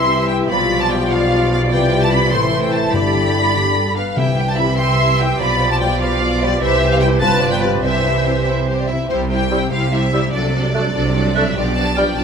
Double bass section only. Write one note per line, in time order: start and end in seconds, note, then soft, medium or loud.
0.00 0.47 C2 soft
0.52 1.71 B1 medium
1.72 2.33 C2 medium
2.33 2.94 A1 medium
2.94 3.95 G1 soft
4.17 5.36 C2 soft
5.40 6.59 B1 medium
6.61 7.20 C2 medium
7.22 7.84 G1 medium
7.83 8.87 C2 soft
9.09 9.64 C2 medium
9.72 10.26 C2 soft
10.33 10.87 C2 medium
10.94 11.49 C2 medium
11.56 12.10 B1 soft
12.17 12.24 B1 soft